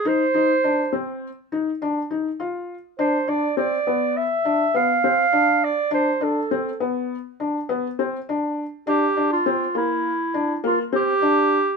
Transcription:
0.05 D#4 C5
0.34 D#4
0.64 D4
0.93 C4
1.52 D#4
1.82 D4
2.11 D#4
2.40 F4
2.99 D4 C5
3.28 D4 D5
3.57 C4 D5
3.87 B3
4.17 E5
4.45 D4
4.74 B3 F5
5.04 C4
5.33 D4
5.64 D5
5.91 D4 C5
6.21 D4 A4
6.51 C4
6.80 B3
7.40 D4
7.69 B3
7.99 C4
8.29 D4
8.87 D4 G4
9.17 D4
9.33 F4
9.46 C4
9.75 A#3 E4
10.34 D4
10.64 A#3 F4
10.93 C4 G4
11.22 D4

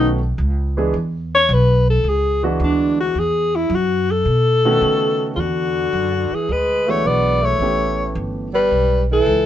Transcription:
Already playing: B1 D#3 A3 B3 C#4 F#4
0.38 C#2
0.77 E3 G#3 B3 D4 G#4
0.94 E2
1.35 C#5
1.49 B1
1.54 B4
1.90 A4
2.04 C#2
2.09 G#4
2.43 E3 G#3 B3 D4 F#4
2.60 D2
2.64 D4
3.01 F#4
3.15 E2
3.19 G#4
3.56 E4
3.70 F#2
3.75 F#4
4.11 A4
4.25 B2
4.65 D#3 A3 B3 C#4 F#4
4.82 C#3
5.35 E2 C#3 D3 F4
5.40 F#4
5.93 F#2
6.31 E3, muted upright bass stroke
6.35 G#4
6.49 D2 G#3 B4
6.87 E3 G#3 A3 B3 D4 F#4 C#5
7.04 B1 B3 D5
7.42 A3 C#5
7.59 A1 E3 A3 B3 C#4 G4
8.15 G1
8.53 G3 B4
8.71 B1
9.11 E3 A4
9.26 C#2

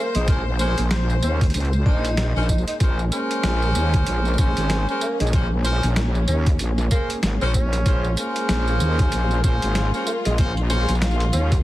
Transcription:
Already playing: G#3 A#3 C5
0.15 A#1 G#3, closed hi-hat, tambourine
0.28 C#4 G#4 A#4 C5, kick, closed hi-hat, tambourine
0.59 C#4 G#4 A#4 C5, tambourine
0.78 A#1, closed hi-hat, tambourine
0.91 snare, closed hi-hat, tambourine
1.10 tambourine
1.23 D#2 C#4, tambourine
1.41 kick, closed hi-hat
1.43 closed hi-hat
1.50 closed hi-hat
1.54 C#2, closed hi-hat, tambourine
1.60 closed hi-hat
1.65 closed hi-hat
1.73 tambourine
1.86 A#1 C#4 D#4 G#4 A#4 C5, kick
2.05 closed hi-hat, tambourine
2.17 snare, closed hi-hat, tambourine
2.36 A#1 C#4 G#4 A#4 C5, tambourine
2.43 tambourine
2.49 D#4, kick, tambourine
2.58 tambourine
2.68 D#4, closed hi-hat, tambourine
2.80 A#1 C#4 G#4 A#4 C5, kick, closed hi-hat, tambourine
2.99 tambourine
3.12 C#4 G#4 A#4 C5, tambourine
3.31 closed hi-hat, tambourine
3.43 A#1, snare, closed hi-hat, tambourine
3.62 tambourine
3.75 D#2, tambourine
3.94 kick, closed hi-hat, tambourine
4.07 A#1, closed hi-hat, tambourine
4.25 tambourine
4.28 tambourine
4.34 tambourine
4.38 A#1 C#4 G#4 A#4 C5, kick, snare, tambourine
4.57 G#1, closed hi-hat, tambourine
4.70 snare, closed hi-hat, tambourine
4.88 C#4 G#4 A#4 C5, tambourine
5.01 A#3, tambourine
5.20 A#1 G#3, closed hi-hat
5.27 tambourine
5.33 C#4 G#4 A#4 C5, kick, closed hi-hat, tambourine
5.64 C#4 G#4 A#4 C5, tambourine
5.83 A#1, closed hi-hat, tambourine
5.96 snare, closed hi-hat, tambourine
6.15 tambourine
6.28 D#2 C#4, tambourine
6.47 kick, closed hi-hat, tambourine
6.59 A#1, closed hi-hat, tambourine
6.78 snare, tambourine
6.91 A#3 C#4 G#4 A#4 C5, kick, tambourine
7.10 closed hi-hat, tambourine
7.23 G#1, snare, closed hi-hat, tambourine
7.41 A#1 C#4 G#4 A#4 C5, tambourine
7.54 C#4, kick, tambourine
7.73 snare, closed hi-hat, tambourine
7.86 A#1 C#4 F4 G#4 A#4 C5, kick, closed hi-hat, tambourine
8.04 tambourine
8.17 C#4 G#4 A#4 C5, tambourine
8.36 closed hi-hat, tambourine
8.49 A#1, snare, closed hi-hat, tambourine
8.68 tambourine
8.80 D#2, tambourine
8.99 kick, closed hi-hat, tambourine
9.12 A#1, closed hi-hat, tambourine
9.31 tambourine
9.44 A#1 C#4 G#4 A#4 C5, kick, snare, tambourine
9.62 G#1, closed hi-hat, tambourine
9.75 snare, closed hi-hat, tambourine
9.94 C#4 G#4 A#4 C5, tambourine
10.07 A#3, tambourine
10.25 A#1 G#3, closed hi-hat, tambourine
10.38 C#4 G#4 A#4 C5, kick, closed hi-hat, tambourine
10.57 tambourine
10.70 C#4 G#4 A#4 C5, tambourine
10.89 A#1, closed hi-hat, tambourine
10.95 tambourine
11.02 snare, closed hi-hat, tambourine
11.11 tambourine
11.20 closed hi-hat
11.33 D#2 C#4, tambourine
11.52 kick, snare, closed hi-hat, tambourine

